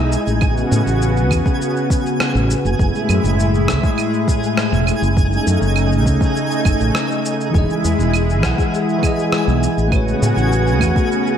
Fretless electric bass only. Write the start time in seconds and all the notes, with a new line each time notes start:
Already playing: B1
0.27 A1
0.71 A2
0.86 A1
1.31 E2
2.35 A1
2.65 F#1
2.79 F#1
3.09 F#2
3.24 F#1
3.69 C#2
4.72 E1
5.02 F#1
5.47 F#2
5.61 F#1
6.06 C#2
6.65 F#1
6.80 A1
7.54 E1
7.84 E2
7.99 E1
8.44 B1
9.47 B1
9.77 A1
10.22 A2
10.36 A1
10.81 E2